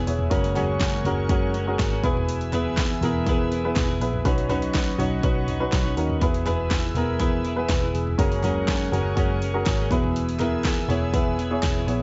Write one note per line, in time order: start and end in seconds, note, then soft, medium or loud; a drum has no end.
0.00 0.34 B2 medium
0.00 0.07 B3 medium
0.00 0.32 B3 medium
0.00 0.07 E4 medium
0.00 0.33 E4 medium
0.00 0.08 G#4 medium
0.00 0.32 G#4 medium
0.00 0.29 B4 medium
0.00 0.34 B4 loud
0.00 0.07 C#5 loud
0.00 0.29 E5 medium
0.00 4.20 G#5 medium
0.00 0.29 E6 medium
0.07 0.30 E1 medium
0.07 0.28 B3 medium
0.07 0.29 E4 medium
0.07 0.29 G#4 medium
0.07 0.29 C#5 medium
0.07 open hi-hat medium
0.19 floor tom medium
0.30 1.01 F#1 loud
0.30 1.01 C#3 medium
0.30 0.55 G#3 medium
0.30 0.56 A#3 medium
0.30 0.52 C#4 medium
0.30 0.56 C#4 medium
0.30 0.52 F#4 medium
0.30 0.53 G#4 medium
0.30 0.53 A#4 loud
0.30 2.02 A#4 medium
0.30 2.02 F#5 medium
0.30 2.02 C#6 medium
0.30 kick loud
0.30 open hi-hat loud
0.35 0.56 F#4 medium
0.44 open hi-hat medium
0.55 1.05 F#2 medium
0.55 1.05 C#3 loud
0.55 1.04 G#3 loud
0.55 1.04 A#3 loud
0.55 0.99 C#4 medium
0.55 1.05 C#4 loud
0.55 0.99 F#4 medium
0.55 1.06 F#4 loud
0.55 0.99 G#4 medium
0.55 0.99 C#5 loud
0.55 clap medium
0.55 floor tom medium
0.55 open hi-hat medium
0.81 kick loud
0.81 snare loud
0.81 clap medium
0.81 clap loud
0.81 open hi-hat loud
1.04 1.28 F#1 loud
1.04 1.29 G#3 medium
1.04 1.29 A#3 medium
1.04 1.27 C#4 loud
1.04 1.30 C#4 medium
1.04 1.27 F#4 medium
1.04 1.30 F#4 medium
1.04 1.27 G#4 medium
1.04 1.27 A#4 loud
1.04 floor tom medium
1.04 open hi-hat medium
1.29 1.75 F#1 loud
1.29 1.54 F#2 medium
1.29 1.54 C#3 medium
1.29 1.52 G#3 loud
1.29 1.54 A#3 medium
1.29 1.62 C#4 medium
1.29 1.55 C#4 medium
1.29 1.62 F#4 medium
1.29 1.55 F#4 loud
1.29 1.62 G#4 medium
1.29 1.62 A#4 loud
1.29 kick loud
1.29 open hi-hat medium
1.53 1.91 G#3 medium
1.53 1.92 A#3 medium
1.53 1.91 C#4 medium
1.53 1.89 F#4 medium
1.53 open hi-hat medium
1.67 1.99 C#4 loud
1.67 1.99 F#4 medium
1.67 1.99 G#4 medium
1.67 1.99 A#4 loud
1.79 2.02 G#1 medium
1.79 kick loud
1.79 snare loud
1.79 clap medium
1.79 clap loud
1.79 open hi-hat medium
1.90 2.03 G#3 medium
1.90 2.04 A#3 medium
1.90 2.04 C#4 medium
1.90 2.03 F#4 medium
2.03 2.98 E1 medium
2.03 2.74 B2 medium
2.03 2.52 E3 medium
2.03 2.47 B3 loud
2.03 2.53 B3 medium
2.03 2.47 E4 medium
2.03 2.53 E4 medium
2.03 2.47 G#4 medium
2.03 2.54 G#4 loud
2.03 8.15 B4 medium
2.03 2.47 B4 loud
2.03 4.23 E5 medium
2.03 4.23 E6 medium
2.03 kick loud
2.03 open hi-hat medium
2.17 floor tom medium
2.29 open hi-hat loud
2.41 open hi-hat medium
2.53 3.01 E3 medium
2.53 2.96 B3 loud
2.53 3.03 B3 loud
2.53 2.96 E4 medium
2.53 3.03 E4 loud
2.53 2.96 G#4 medium
2.53 3.03 G#4 loud
2.53 2.96 B4 medium
2.53 clap medium
2.53 floor tom medium
2.53 open hi-hat medium
2.77 kick loud
2.77 snare loud
2.77 clap medium
2.77 clap loud
2.77 open hi-hat loud
3.01 3.72 E1 loud
3.01 3.26 E3 medium
3.01 3.24 B3 loud
3.01 3.27 B3 medium
3.01 3.24 E4 medium
3.01 3.28 E4 medium
3.01 3.24 G#4 medium
3.01 3.28 G#4 medium
3.01 3.24 A#4 loud
3.01 floor tom medium
3.01 open hi-hat medium
3.27 3.50 E3 medium
3.27 3.60 B3 medium
3.27 3.51 B3 loud
3.27 3.60 E4 medium
3.27 3.52 E4 loud
3.27 3.60 G#4 medium
3.27 3.53 G#4 loud
3.27 3.60 B4 medium
3.27 kick loud
3.27 open hi-hat medium
3.51 3.88 E3 medium
3.51 3.89 B3 medium
3.51 3.89 E4 medium
3.51 3.87 G#4 medium
3.51 open hi-hat medium
3.64 3.96 B3 loud
3.64 3.97 E4 medium
3.64 3.96 G#4 medium
3.64 3.97 B4 loud
3.76 3.99 E1 medium
3.76 kick loud
3.76 snare loud
3.76 clap loud
3.76 clap medium
3.76 open hi-hat medium
3.88 4.26 B3 soft
3.88 4.26 E4 medium
3.88 4.25 G#4 medium
4.00 4.23 A#1 medium
4.00 4.22 B3 medium
4.00 4.22 E4 medium
4.00 4.22 G#4 medium
4.00 4.22 B4 medium
4.00 open hi-hat medium
4.13 floor tom medium
4.25 4.95 B1 loud
4.25 4.48 F#3 medium
4.25 4.47 C#4 loud
4.25 4.49 C#4 medium
4.25 4.47 D#4 medium
4.25 4.49 D#4 medium
4.25 4.47 F#4 medium
4.25 4.47 B4 loud
4.25 6.20 D#5 medium
4.25 6.20 F#5 medium
4.25 6.20 C#6 medium
4.25 kick loud
4.25 open hi-hat loud
4.29 4.50 F#4 medium
4.38 open hi-hat medium
4.49 4.98 B2 medium
4.49 4.97 F#3 medium
4.49 4.93 C#4 medium
4.49 4.98 C#4 loud
4.49 4.93 D#4 medium
4.49 4.99 D#4 loud
4.49 4.93 F#4 medium
4.49 4.99 F#4 medium
4.49 4.93 B4 loud
4.49 clap medium
4.49 floor tom medium
4.49 open hi-hat medium
4.62 open hi-hat medium
4.74 kick loud
4.74 snare loud
4.74 clap medium
4.74 clap loud
4.74 open hi-hat medium
4.98 5.22 B1 loud
4.98 5.22 F#3 medium
4.98 5.20 C#4 medium
4.98 5.23 C#4 medium
4.98 5.20 D#4 medium
4.98 5.23 D#4 medium
4.98 5.20 F#4 medium
4.98 5.23 F#4 medium
4.98 5.20 C#5 loud
4.98 floor tom medium
4.98 open hi-hat medium
5.22 5.69 B1 loud
5.22 5.47 B2 medium
5.22 5.46 F#3 medium
5.22 5.56 C#4 medium
5.22 5.47 C#4 medium
5.22 5.56 D#4 medium
5.22 5.48 D#4 medium
5.22 5.56 F#4 medium
5.22 5.49 F#4 medium
5.22 5.56 B4 medium
5.22 kick loud
5.22 open hi-hat medium
5.47 5.84 F#3 medium
5.47 5.85 C#4 medium
5.47 5.84 D#4 medium
5.47 5.83 F#4 medium
5.47 floor tom medium
5.47 open hi-hat medium
5.60 5.92 C#4 medium
5.60 5.92 D#4 medium
5.60 5.92 F#4 medium
5.60 5.93 B4 loud
5.72 5.96 B1 medium
5.72 kick loud
5.72 snare loud
5.72 clap medium
5.72 clap loud
5.72 open hi-hat medium
5.84 6.21 C#4 medium
5.84 6.22 D#4 medium
5.84 6.21 F#4 medium
5.97 6.20 D#2 medium
5.97 6.18 C#4 medium
5.97 6.19 D#4 medium
5.97 6.19 F#4 medium
5.97 6.19 A#4 medium
5.97 open hi-hat medium
6.10 floor tom medium
6.20 6.92 E1 loud
6.20 6.92 B2 medium
6.20 6.44 E3 medium
6.20 6.45 B3 medium
6.20 6.43 B3 medium
6.20 6.43 E4 medium
6.20 6.46 E4 medium
6.20 6.43 G#4 medium
6.20 6.46 G#4 medium
6.20 6.44 B4 loud
6.20 8.17 E5 medium
6.20 8.16 G#5 medium
6.20 8.16 E6 medium
6.20 kick loud
6.20 open hi-hat loud
6.34 open hi-hat medium
6.45 6.93 E3 medium
6.45 6.89 B3 medium
6.45 6.95 B3 medium
6.45 6.89 E4 medium
6.45 6.95 E4 loud
6.45 6.89 G#4 medium
6.45 6.98 G#4 medium
6.45 6.89 B4 loud
6.45 clap medium
6.45 floor tom medium
6.45 open hi-hat medium
6.71 kick loud
6.71 snare loud
6.71 clap medium
6.71 clap loud
6.71 open hi-hat medium
6.95 7.65 E1 loud
6.95 7.18 E3 medium
6.95 7.19 B3 medium
6.95 7.18 B3 loud
6.95 7.19 E4 medium
6.95 7.18 E4 medium
6.95 7.18 G#4 medium
6.95 7.20 G#4 medium
6.95 7.18 A#4 loud
6.95 floor tom medium
6.95 open hi-hat medium
7.19 7.43 E3 loud
7.19 7.44 B3 medium
7.19 7.52 B3 medium
7.19 7.52 E4 medium
7.19 7.45 E4 medium
7.19 7.52 G#4 medium
7.19 7.45 G#4 loud
7.19 7.52 B4 medium
7.19 kick loud
7.19 open hi-hat medium
7.44 7.81 E3 medium
7.44 7.82 B3 medium
7.44 7.82 E4 medium
7.44 7.80 G#4 medium
7.44 open hi-hat medium
7.56 7.89 B3 medium
7.56 7.89 E4 medium
7.56 7.69 G#4 medium
7.56 7.68 B4 loud
7.69 7.92 E1 medium
7.69 7.93 B4 medium
7.69 kick loud
7.69 snare loud
7.69 clap loud
7.69 clap medium
7.69 open hi-hat medium
7.81 8.19 B3 soft
7.81 8.19 E4 medium
7.81 8.18 G#4 medium
7.94 8.17 E1 medium
7.94 8.17 G#4 medium
7.94 open hi-hat medium
8.07 floor tom medium
8.18 8.89 F#1 loud
8.18 8.88 C#3 medium
8.18 8.43 G#3 medium
8.18 8.44 A#3 medium
8.18 8.40 C#4 loud
8.18 8.44 C#4 medium
8.18 8.40 F#4 medium
8.18 8.40 G#4 medium
8.18 8.45 G#4 medium
8.18 8.40 A#4 loud
8.18 9.89 A#4 medium
8.18 9.89 F#5 medium
8.18 9.89 G#5 medium
8.18 9.89 C#6 medium
8.18 kick loud
8.18 open hi-hat loud
8.32 open hi-hat medium
8.43 8.92 F#2 medium
8.43 8.93 C#3 medium
8.43 8.91 G#3 medium
8.43 8.92 A#3 loud
8.43 8.86 C#4 medium
8.43 8.93 C#4 loud
8.43 8.86 F#4 medium
8.43 8.86 G#4 medium
8.43 8.94 G#4 loud
8.43 8.86 A#4 loud
8.43 clap medium
8.43 floor tom medium
8.43 open hi-hat medium
8.68 kick loud
8.68 snare loud
8.68 clap medium
8.68 clap loud
8.68 open hi-hat medium
8.91 9.15 F#1 loud
8.91 9.16 G#3 medium
8.91 9.17 A#3 medium
8.91 9.14 C#4 loud
8.91 9.17 C#4 medium
8.91 9.14 F#4 medium
8.91 9.14 G#4 medium
8.91 9.18 G#4 medium
8.91 9.14 A#4 loud
8.91 floor tom medium
8.91 open hi-hat medium
9.16 9.63 F#1 loud
9.16 9.41 F#2 medium
9.16 9.42 C#3 medium
9.16 9.39 G#3 medium
9.16 9.41 A#3 loud
9.16 9.49 C#4 medium
9.16 9.42 C#4 loud
9.16 9.49 F#4 medium
9.16 9.49 G#4 medium
9.16 9.43 G#4 loud
9.16 9.49 C#5 loud
9.16 kick loud
9.16 open hi-hat medium
9.40 9.78 G#3 medium
9.40 9.79 A#3 medium
9.40 9.78 C#4 medium
9.40 9.77 G#4 medium
9.40 open hi-hat medium
9.54 9.86 C#4 medium
9.54 9.86 F#4 medium
9.54 9.86 G#4 medium
9.54 9.86 A#4 loud
9.66 9.89 G#1 loud
9.66 kick loud
9.66 snare loud
9.66 clap loud
9.66 clap medium
9.66 open hi-hat medium
9.78 9.91 G#3 medium
9.78 9.91 A#3 medium
9.78 9.91 C#4 medium
9.78 9.90 G#4 medium
9.91 10.85 E1 loud
9.91 10.61 B2 medium
9.91 10.39 E3 medium
9.91 12.02 B3 medium
9.91 10.34 B3 medium
9.91 10.40 B3 medium
9.91 10.34 E4 medium
9.91 10.40 E4 medium
9.91 10.34 G#4 medium
9.91 10.41 G#4 medium
9.91 10.34 B4 loud
9.91 12.02 E5 medium
9.91 12.02 G#5 medium
9.91 12.02 E6 medium
9.91 kick loud
9.91 open hi-hat medium
10.04 floor tom medium
10.16 open hi-hat loud
10.29 open hi-hat medium
10.39 10.87 E3 loud
10.39 10.83 B3 loud
10.39 10.89 B3 medium
10.39 10.83 E4 medium
10.39 10.89 E4 loud
10.39 10.83 G#4 medium
10.39 10.90 G#4 loud
10.39 10.83 A#4 loud
10.39 clap medium
10.39 floor tom medium
10.39 open hi-hat medium
10.64 kick loud
10.64 snare loud
10.64 clap medium
10.64 clap loud
10.64 open hi-hat loud
10.88 11.59 E1 loud
10.88 11.11 E3 medium
10.88 11.11 B3 medium
10.88 11.12 B3 medium
10.88 11.10 E4 medium
10.88 11.13 E4 medium
10.88 11.10 G#4 medium
10.88 11.14 G#4 medium
10.88 11.10 C#5 loud
10.88 floor tom medium
10.88 open hi-hat medium
11.13 11.36 E3 medium
11.13 11.46 B3 medium
11.13 11.38 B3 loud
11.13 11.46 E4 medium
11.13 11.39 E4 loud
11.13 11.46 G#4 medium
11.13 11.39 G#4 loud
11.13 11.46 B4 medium
11.13 kick loud
11.13 open hi-hat medium
11.38 11.75 E3 medium
11.38 11.75 B3 medium
11.38 11.75 E4 medium
11.38 11.74 G#4 medium
11.38 open hi-hat medium
11.50 11.83 B3 medium
11.50 11.83 E4 medium
11.50 11.83 G#4 medium
11.50 11.83 C#5 loud
11.63 11.86 E1 medium
11.63 kick loud
11.63 snare loud
11.63 clap loud
11.63 clap medium
11.63 open hi-hat medium
11.75 12.02 B3 medium
11.75 12.02 E4 medium
11.75 12.02 G#4 medium
11.87 12.02 A#1 medium
11.87 12.02 B3 medium
11.87 12.02 E4 medium
11.87 12.02 G#4 medium
11.87 12.02 C#5 medium
11.87 open hi-hat medium